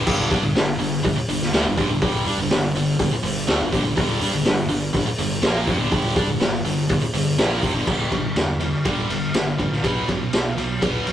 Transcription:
0.06 fingered electric bass G1, distorted electric guitar G2 D3 G3, kick, crash
0.30 fingered electric bass G2, distorted electric guitar G3 D4, kick, open hi-hat
0.43 fingered electric bass G1, distorted electric guitar G2 D3
0.55 fingered electric bass G1, distorted electric guitar G2 D3, snare, open hi-hat
0.79 fingered electric bass G1, distorted electric guitar G2 D3, open hi-hat
1.03 fingered electric bass G1, distorted electric guitar G2 D3, kick, open hi-hat
1.16 muted distorted electric guitar stroke, muted fingered electric bass stroke
1.28 fingered electric bass G1, distorted electric guitar G2 D3, open hi-hat
1.42 snare
1.52 fingered electric bass D2, distorted electric guitar D3 A3, snare, open hi-hat
1.65 fingered electric bass G1, distorted electric guitar G2 D3
1.77 fingered electric bass G1, distorted electric guitar G2 D3, kick, open hi-hat
1.89 fingered electric bass G1, distorted electric guitar G2 D3
2.02 fingered electric bass G1, distorted electric guitar G2 D3 G3, kick, open hi-hat
2.26 fingered electric bass G2, distorted electric guitar G3 D4, open hi-hat
2.38 fingered electric bass G1, distorted electric guitar G2 D3
2.50 fingered electric bass G1, distorted electric guitar G2 D3, snare, open hi-hat
2.74 fingered electric bass G1, distorted electric guitar G2 D3, open hi-hat
2.99 fingered electric bass G1, distorted electric guitar G2 D3, kick, open hi-hat
3.11 muted fingered electric bass stroke, muted distorted electric guitar stroke
3.23 fingered electric bass G1, distorted electric guitar G2 D3, open hi-hat
3.47 fingered electric bass D2, distorted electric guitar D3 A3, snare, open hi-hat
3.60 fingered electric bass G1, distorted electric guitar G2 D3
3.72 fingered electric bass G1, distorted electric guitar G2 D3, kick, open hi-hat
3.84 fingered electric bass G1, distorted electric guitar G2 D3
3.96 fingered electric bass G1, distorted electric guitar G2 D3 G3, kick, open hi-hat
4.21 fingered electric bass G2, distorted electric guitar G3 D4, open hi-hat
4.33 fingered electric bass G1, distorted electric guitar G2 D3
4.45 fingered electric bass G1, distorted electric guitar G2 D3, snare, open hi-hat
4.69 fingered electric bass G1, distorted electric guitar G2 D3, open hi-hat
4.93 fingered electric bass G1, distorted electric guitar G2 D3, kick, open hi-hat
5.06 muted distorted electric guitar stroke, muted fingered electric bass stroke
5.18 fingered electric bass G1, distorted electric guitar G2 D3, open hi-hat
5.42 fingered electric bass A#1, distorted electric guitar A#2 F3 A#3, snare, open hi-hat
5.67 fingered electric bass F1, distorted electric guitar F2 C3, kick, open hi-hat
5.79 fingered electric bass G1, distorted electric guitar G2 D3
5.91 fingered electric bass G1, distorted electric guitar G2 D3 G3, kick, open hi-hat
6.16 fingered electric bass G2, distorted electric guitar G3 D4, kick, open hi-hat
6.27 fingered electric bass G1, distorted electric guitar G2 D3
6.40 fingered electric bass G1, distorted electric guitar G2 D3, snare, open hi-hat
6.64 fingered electric bass G1, distorted electric guitar G2 D3, open hi-hat
6.89 fingered electric bass G1, distorted electric guitar G2 D3, kick, open hi-hat
7.01 muted fingered electric bass stroke, muted distorted electric guitar stroke
7.13 fingered electric bass G1, distorted electric guitar G2 D3, open hi-hat
7.38 fingered electric bass A#1, distorted electric guitar A#2 F3 A#3, snare, open hi-hat
7.62 fingered electric bass F1, distorted electric guitar F2 C3, kick, open hi-hat
7.74 fingered electric bass G1, distorted electric guitar G2 D3
7.87 fingered electric bass G1, distorted electric guitar G2 D3 G3, kick, crash
8.12 fingered electric bass B1, distorted electric guitar G2 D3, kick, ride
8.36 fingered electric bass E2, distorted electric guitar G2 D3, snare, ride
8.60 distorted electric guitar G2 D3, ride
8.85 fingered electric bass G1, distorted electric guitar G2 D3 G3, kick, ride
9.10 fingered electric bass G1, distorted electric guitar G2 D3, ride
9.34 fingered electric bass G1, distorted electric guitar G2 D3, snare, ride
9.59 fingered electric bass A1, distorted electric guitar G2 D3, kick, ride
9.72 snare
9.84 fingered electric bass B1, distorted electric guitar B2 F#3 B3, kick, ride
10.09 fingered electric bass B1, distorted electric guitar B2 F#3, kick, ride
10.33 fingered electric bass B1, distorted electric guitar B2 F#3, snare, ride
10.57 fingered electric bass B1, distorted electric guitar B2 F#3, ride
10.82 fingered electric bass B1, distorted electric guitar B2 F#3 B3, kick, ride
11.06 fingered electric bass B1, distorted electric guitar B2 F#3, ride

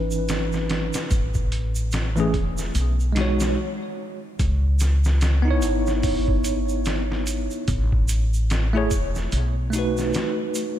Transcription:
Already playing: upright bass G#1, tine electric piano E3 C#4 D#4 B4
0.11 shaker
0.28 snare, closed hi-hat, shaker
0.52 snare, shaker
0.70 snare, closed hi-hat
0.93 snare, closed hi-hat, shaker
1.11 upright bass A1, kick, closed hi-hat, shaker
1.34 kick, shaker
1.52 closed hi-hat
1.75 shaker
1.92 snare, closed hi-hat, shaker
2.16 tine electric piano E3 A3 C#4, shaker
2.20 tine electric piano G#4
2.34 upright bass E1, kick, closed hi-hat
2.58 snare, shaker
2.75 upright bass B1, closed hi-hat, shaker
3.00 shaker
3.12 tine electric piano G#3 D#4, closed hi-hat
3.17 tine electric piano F#4 C#5, snare
3.40 snare, closed hi-hat, shaker
4.39 upright bass C#2, kick, closed hi-hat, shaker
4.79 snare, closed hi-hat, shaker
5.04 snare, shaker
5.21 snare, closed hi-hat, shaker
5.42 tine electric piano B3 D#4
5.48 tine electric piano E4 C#5
5.62 upright bass G#1, closed hi-hat, shaker
5.87 snare, shaker
6.03 kick, open hi-hat, shaker
6.28 kick
6.44 closed hi-hat, shaker
6.69 shaker
6.85 snare, closed hi-hat, shaker
7.12 snare
7.27 closed hi-hat, shaker
7.51 shaker
7.68 upright bass A1, kick, closed hi-hat, shaker
7.92 kick
8.08 closed hi-hat, shaker
8.34 shaker
8.50 snare, closed hi-hat, shaker
8.73 tine electric piano A3 E4 G#4
8.77 tine electric piano C#5
8.91 upright bass E1, kick, closed hi-hat, shaker
9.15 snare, shaker
9.32 upright bass B1, closed hi-hat, shaker
9.70 tine electric piano A3 D#4, closed hi-hat, shaker
9.76 tine electric piano F#4 B4
9.97 snare, shaker
10.13 snare, closed hi-hat, shaker
10.55 closed hi-hat, shaker

